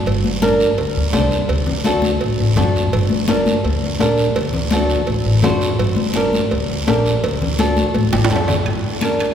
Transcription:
0.06 0.63 G1 medium
0.06 cowbell medium
0.06 high conga soft
0.06 long guiro medium
0.24 high conga medium
0.42 0.67 D4 medium
0.42 0.67 G4 medium
0.42 0.67 A#4 loud
0.42 cowbell medium
0.42 high conga medium
0.42 short guiro medium
0.60 short guiro medium
0.78 0.92 D2 medium
0.78 cowbell medium
0.78 high conga soft
0.78 long guiro medium
0.97 1.11 D2 medium
1.13 1.42 C2 medium
1.13 1.38 D4 medium
1.13 1.39 G4 medium
1.13 1.39 C5 medium
1.13 cowbell medium
1.13 high conga medium
1.13 low timbale medium
1.13 short guiro medium
1.31 short guiro medium
1.49 2.07 D2 medium
1.49 cowbell loud
1.49 high conga soft
1.49 long guiro medium
1.66 low conga medium
1.84 2.11 D4 medium
1.84 2.11 F#4 medium
1.84 2.11 A4 loud
1.84 cowbell medium
1.84 high conga medium
1.84 short guiro medium
2.02 high conga medium
2.02 short guiro medium
2.20 2.36 A1 medium
2.20 cowbell medium
2.20 high conga soft
2.20 long guiro medium
2.40 2.54 A1 medium
2.56 2.87 F#2 medium
2.56 2.82 D4 medium
2.56 2.83 F#4 medium
2.56 2.82 A4 medium
2.56 cowbell medium
2.56 high conga medium
2.56 low conga medium
2.56 low timbale medium
2.56 short guiro medium
2.76 short guiro medium
2.92 3.51 G1 loud
2.92 cowbell loud
2.92 high conga soft
2.92 long guiro medium
3.10 high conga medium
3.28 3.54 D4 medium
3.28 3.54 G4 medium
3.28 3.54 A#4 loud
3.28 cowbell medium
3.28 high conga loud
3.28 short guiro medium
3.46 high conga medium
3.46 short guiro medium
3.64 3.79 D2 medium
3.64 cowbell medium
3.64 high conga soft
3.64 long guiro medium
3.83 3.97 D2 medium
3.99 4.29 A#1 medium
3.99 4.25 D4 medium
3.99 4.25 G4 medium
3.99 4.26 A#4 medium
3.99 cowbell medium
3.99 high conga medium
3.99 low timbale medium
3.99 short guiro medium
4.18 short guiro medium
4.36 4.94 D2 loud
4.36 cowbell loud
4.36 high conga soft
4.36 long guiro medium
4.54 low conga medium
4.71 4.97 D4 medium
4.71 4.97 F#4 medium
4.71 4.98 A4 medium
4.71 cowbell medium
4.71 high conga loud
4.71 short guiro medium
4.90 short guiro medium
5.07 5.22 A1 medium
5.07 cowbell medium
5.07 high conga soft
5.07 long guiro medium
5.26 5.40 A1 medium
5.43 5.73 F#2 medium
5.43 5.69 D4 medium
5.43 5.69 F#4 medium
5.43 5.69 C5 medium
5.43 cowbell medium
5.43 high conga medium
5.43 low conga medium
5.43 low timbale medium
5.43 short guiro medium
5.61 short guiro medium
5.79 6.37 G1 medium
5.79 cowbell loud
5.79 high conga soft
5.79 long guiro medium
5.96 high conga medium
6.14 6.41 D4 medium
6.14 6.41 G4 medium
6.14 6.41 A#4 loud
6.14 cowbell medium
6.14 high conga medium
6.14 short guiro medium
6.33 high conga medium
6.33 short guiro medium
6.51 6.66 D2 medium
6.51 cowbell medium
6.51 high conga soft
6.51 long guiro medium
6.69 6.84 D2 medium
6.87 7.16 A#1 medium
6.87 7.12 D4 medium
6.87 7.13 G4 medium
6.87 7.13 A#4 medium
6.87 cowbell medium
6.87 high conga medium
6.87 low timbale medium
6.87 short guiro medium
7.06 short guiro medium
7.24 7.81 D2 medium
7.24 cowbell loud
7.24 high conga soft
7.24 long guiro medium
7.42 low conga medium
7.59 7.84 D4 medium
7.59 7.84 F#4 medium
7.59 7.84 A4 loud
7.59 cowbell medium
7.59 high conga loud
7.59 short guiro medium
7.77 high conga medium
7.77 short guiro medium
7.94 8.09 A1 medium
7.94 cowbell medium
7.94 high conga medium
7.94 long guiro medium
8.13 8.27 A1 medium
8.13 high conga medium
8.13 high timbale medium
8.25 high timbale medium
8.30 8.60 F#2 medium
8.30 8.56 D4 medium
8.30 8.56 F#4 medium
8.30 8.56 A4 medium
8.30 cowbell medium
8.30 short guiro medium
8.36 low timbale medium
8.48 low conga medium
8.48 low timbale medium
8.48 short guiro medium
8.66 8.81 G2 medium
8.66 high conga soft
8.66 high timbale medium
8.66 long guiro medium
9.01 9.28 D4 medium
9.01 9.28 G4 medium
9.01 9.28 A#4 medium
9.01 high conga medium
9.01 high timbale medium
9.01 short guiro medium
9.20 high timbale medium
9.20 short guiro medium

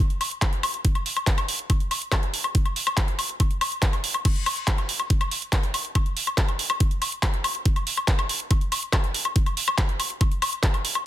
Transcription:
0.10 closed hi-hat soft
0.21 open hi-hat loud
0.21 high woodblock soft
0.31 closed hi-hat soft
0.42 kick loud
0.42 clap loud
0.42 closed hi-hat medium
0.42 high woodblock soft
0.53 closed hi-hat soft
0.63 open hi-hat loud
0.63 high woodblock medium
0.74 closed hi-hat soft
0.85 kick loud
0.85 closed hi-hat loud
0.95 closed hi-hat soft
0.95 high woodblock soft
1.06 open hi-hat loud
1.17 closed hi-hat soft
1.17 high woodblock soft
1.27 kick loud
1.27 clap loud
1.27 closed hi-hat loud
1.38 closed hi-hat soft
1.38 high woodblock medium
1.48 open hi-hat loud
1.59 closed hi-hat soft
1.70 kick loud
1.70 closed hi-hat loud
1.70 high woodblock soft
1.80 closed hi-hat soft
1.91 open hi-hat loud
1.91 high woodblock soft
2.02 closed hi-hat soft
2.12 kick loud
2.12 clap loud
2.12 closed hi-hat medium
2.12 high woodblock medium
2.23 closed hi-hat soft
2.34 open hi-hat loud
2.44 closed hi-hat soft
2.44 high woodblock soft
2.55 kick loud
2.55 closed hi-hat loud
2.66 closed hi-hat soft
2.66 high woodblock soft
2.76 open hi-hat loud
2.87 closed hi-hat soft
2.87 high woodblock medium
2.97 kick loud
2.97 clap loud
2.97 closed hi-hat loud
3.08 closed hi-hat soft
3.19 open hi-hat loud
3.19 high woodblock soft
3.29 closed hi-hat soft
3.40 kick loud
3.40 closed hi-hat loud
3.40 high woodblock soft
3.51 closed hi-hat soft
3.61 open hi-hat loud
3.61 high woodblock medium
3.72 closed hi-hat soft
3.82 kick loud
3.82 clap loud
3.82 closed hi-hat loud
3.93 closed hi-hat soft
3.93 high woodblock soft
4.04 open hi-hat loud
4.14 closed hi-hat soft
4.14 high woodblock soft
4.25 kick loud
4.25 closed hi-hat loud
4.25 crash medium
4.25 high woodblock soft
4.36 closed hi-hat soft
4.46 open hi-hat loud
4.46 high woodblock medium
4.57 closed hi-hat soft
4.68 kick loud
4.68 clap loud
4.68 closed hi-hat medium
4.78 closed hi-hat soft
4.78 high woodblock soft
4.89 open hi-hat loud
5.00 high woodblock soft
5.10 kick loud
5.10 closed hi-hat loud
5.21 closed hi-hat soft
5.21 high woodblock medium
5.31 open hi-hat loud
5.42 closed hi-hat soft
5.53 kick loud
5.53 clap loud
5.53 closed hi-hat loud
5.53 high woodblock soft
5.63 closed hi-hat soft
5.74 open hi-hat loud
5.74 high woodblock soft
5.85 closed hi-hat soft
5.95 kick loud
5.95 closed hi-hat medium
5.95 high woodblock medium
6.06 closed hi-hat soft
6.17 open hi-hat loud
6.27 closed hi-hat soft
6.27 high woodblock soft
6.38 kick loud
6.38 clap loud
6.38 closed hi-hat medium
6.48 closed hi-hat soft
6.48 high woodblock soft
6.59 open hi-hat loud
6.70 high woodblock medium
6.80 kick loud
6.80 closed hi-hat medium
6.91 closed hi-hat soft
7.02 open hi-hat loud
7.02 high woodblock soft
7.12 closed hi-hat soft
7.23 kick loud
7.23 clap loud
7.23 closed hi-hat loud
7.23 high woodblock soft
7.34 closed hi-hat soft
7.44 open hi-hat loud
7.44 high woodblock medium
7.55 closed hi-hat soft
7.66 kick loud
7.66 closed hi-hat medium
7.76 closed hi-hat soft
7.76 high woodblock soft
7.87 open hi-hat loud
7.97 closed hi-hat soft
7.97 high woodblock soft
8.08 kick loud
8.08 clap loud
8.08 closed hi-hat medium
8.19 closed hi-hat soft
8.19 high woodblock medium
8.29 open hi-hat loud
8.40 closed hi-hat soft
8.51 kick loud
8.51 closed hi-hat medium
8.51 high woodblock soft
8.61 closed hi-hat soft
8.72 open hi-hat loud
8.72 high woodblock soft
8.83 closed hi-hat soft
8.93 kick loud
8.93 clap loud
8.93 closed hi-hat medium
8.93 high woodblock medium
9.04 closed hi-hat soft
9.14 open hi-hat loud
9.25 closed hi-hat soft
9.25 high woodblock soft
9.36 kick loud
9.36 closed hi-hat medium
9.46 closed hi-hat soft
9.46 high woodblock soft
9.57 open hi-hat loud
9.68 closed hi-hat soft
9.68 high woodblock medium
9.78 kick loud
9.78 clap loud
9.78 closed hi-hat medium
9.89 closed hi-hat soft
10.00 open hi-hat loud
10.00 high woodblock soft
10.10 closed hi-hat soft
10.21 kick loud
10.21 closed hi-hat medium
10.21 high woodblock soft
10.32 closed hi-hat soft
10.42 open hi-hat loud
10.42 high woodblock medium
10.53 closed hi-hat soft
10.63 kick loud
10.63 clap loud
10.63 closed hi-hat medium
10.74 closed hi-hat soft
10.74 high woodblock soft
10.85 open hi-hat loud
10.95 closed hi-hat soft
10.95 high woodblock soft

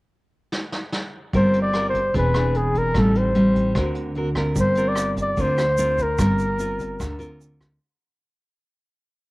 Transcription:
0.52 snare soft
0.72 snare medium
0.92 snare medium
1.33 2.10 G1 medium
1.33 2.12 G3 medium
1.33 1.71 C4 medium
1.33 1.71 F4 medium
1.33 1.71 A#4 medium
1.33 1.60 C5 medium
1.33 kick medium
1.33 closed hi-hat medium
1.53 closed hi-hat soft
1.62 1.86 D5 medium
1.73 2.00 C4 soft
1.73 2.00 F4 soft
1.73 2.00 A#4 medium
1.73 cross-stick medium
1.73 closed hi-hat soft
1.89 2.13 C5 medium
1.94 kick soft
1.94 closed hi-hat soft
2.14 2.91 E1 medium
2.14 2.93 E3 medium
2.14 2.31 C4 medium
2.14 2.31 D4 medium
2.14 2.32 G#4 medium
2.14 2.58 B4 medium
2.14 kick medium
2.14 closed hi-hat medium
2.34 2.92 C4 medium
2.34 2.92 D4 medium
2.34 2.92 G#4 medium
2.34 cross-stick medium
2.34 closed hi-hat soft
2.54 2.80 G#4 medium
2.54 closed hi-hat soft
2.75 3.01 A#4 medium
2.75 kick soft
2.75 closed hi-hat soft
2.94 3.72 A1 medium
2.94 3.74 A2 medium
2.94 3.33 G3 soft
2.94 3.33 C4 medium
2.94 3.33 D#4 medium
2.94 kick medium
2.94 cross-stick medium
2.94 closed hi-hat medium
2.99 3.19 A4 medium
3.15 3.97 C5 medium
3.15 closed hi-hat soft
3.35 3.72 G3 medium
3.35 3.73 C4 medium
3.35 3.73 D#4 medium
3.35 closed hi-hat soft
3.55 kick soft
3.55 closed hi-hat soft
3.75 4.52 D2 medium
3.75 4.55 D3 medium
3.75 4.13 C4 soft
3.75 4.13 F#4 medium
3.75 4.14 A#4 medium
3.75 kick medium
3.75 cross-stick medium
3.75 closed hi-hat medium
3.95 closed hi-hat soft
4.15 4.28 C4 soft
4.15 4.29 F#4 soft
4.15 4.29 A#4 medium
4.15 closed hi-hat soft
4.35 4.76 C4 soft
4.35 4.76 F4 medium
4.35 4.76 A#4 medium
4.35 kick soft
4.35 cross-stick medium
4.35 closed hi-hat soft
4.55 5.33 G1 medium
4.55 5.35 G3 medium
4.55 kick medium
4.55 closed hi-hat medium
4.55 shaker medium
4.60 4.90 C5 medium
4.75 5.34 C4 medium
4.75 5.35 F4 medium
4.75 5.35 A#4 medium
4.75 closed hi-hat soft
4.75 shaker soft
4.88 5.13 D5 medium
4.95 cross-stick medium
4.95 closed hi-hat soft
4.95 shaker medium
5.17 kick soft
5.17 closed hi-hat soft
5.17 shaker soft
5.21 5.42 D5 medium
5.37 6.15 D2 medium
5.37 6.17 D3 medium
5.37 5.64 C4 medium
5.37 5.64 F4 medium
5.37 5.64 A#4 medium
5.37 6.04 C5 medium
5.37 kick medium
5.37 closed hi-hat medium
5.37 shaker medium
5.58 cross-stick medium
5.58 closed hi-hat soft
5.58 shaker soft
5.78 6.04 C4 medium
5.78 6.04 F4 medium
5.78 6.04 A#4 medium
5.78 closed hi-hat soft
5.78 shaker medium
5.98 kick soft
5.98 closed hi-hat soft
5.98 shaker soft
6.02 7.42 A#4 medium
6.18 6.96 G1 medium
6.18 6.97 G3 medium
6.18 6.45 C4 medium
6.18 6.45 F4 soft
6.18 6.45 A#4 medium
6.18 kick medium
6.18 cross-stick medium
6.18 closed hi-hat medium
6.18 shaker medium
6.39 closed hi-hat soft
6.39 shaker soft
6.59 6.99 C4 medium
6.59 7.00 F4 medium
6.59 7.00 A#4 medium
6.59 closed hi-hat soft
6.59 shaker medium
6.80 kick soft
6.80 closed hi-hat soft
6.80 shaker soft
7.00 7.77 D2 medium
7.00 7.79 D3 medium
7.00 kick medium
7.00 cross-stick medium
7.00 closed hi-hat soft
7.00 shaker medium
7.19 7.78 C4 medium
7.19 7.78 F4 medium
7.19 7.79 A#4 medium
7.19 closed hi-hat soft
7.19 shaker soft
7.40 closed hi-hat soft
7.40 shaker medium
7.61 kick soft
7.61 cross-stick medium
7.61 closed hi-hat soft
7.61 shaker soft

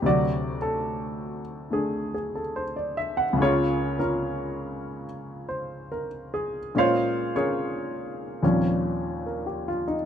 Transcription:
0.00 3.39 D2 medium
0.00 3.39 C3 medium
0.00 0.20 G4 medium
0.06 3.40 F#3 medium
0.06 3.41 F#4 medium
0.06 0.57 D5 medium
0.62 1.41 A4 medium
1.70 3.39 D3 soft
1.70 3.39 A3 soft
1.70 2.13 G#4 medium
2.14 2.40 G#4 soft
2.35 2.64 A4 soft
2.56 2.96 C5 medium
2.76 3.13 D5 soft
2.97 3.23 E5 medium
3.17 3.47 F#5 medium
3.33 6.72 C#2 medium
3.33 6.73 C#3 medium
3.41 3.99 A#3 medium
3.41 3.97 C#4 medium
3.41 3.98 F4 medium
3.41 3.97 G#4 medium
3.41 3.97 A#4 medium
3.41 3.97 C#5 medium
3.99 5.05 A#3 soft
3.99 5.04 C#4 soft
3.99 5.05 F4 soft
3.99 5.04 A#4 medium
5.49 6.08 C5 soft
5.92 6.58 A#4 medium
6.34 6.92 G#4 medium
6.75 8.41 A#2 medium
6.75 8.43 G#3 soft
6.75 8.43 A#3 soft
6.75 7.35 C#4 medium
6.75 7.33 F4 medium
6.75 7.33 C#5 medium
6.75 7.33 F5 medium
6.79 7.33 C5 medium
7.36 8.40 C#4 medium
7.36 8.41 G#4 medium
7.36 8.40 A#4 medium
7.36 8.40 C#5 medium
8.43 10.05 D#2 medium
8.43 10.05 A#2 soft
8.43 10.05 F3 soft
8.43 10.05 G3 soft
8.43 10.05 C4 soft
8.43 10.05 C#4 medium
9.26 9.67 A#4 soft
9.46 9.83 G4 soft
9.68 9.94 F4 medium
9.88 10.05 D#4 medium

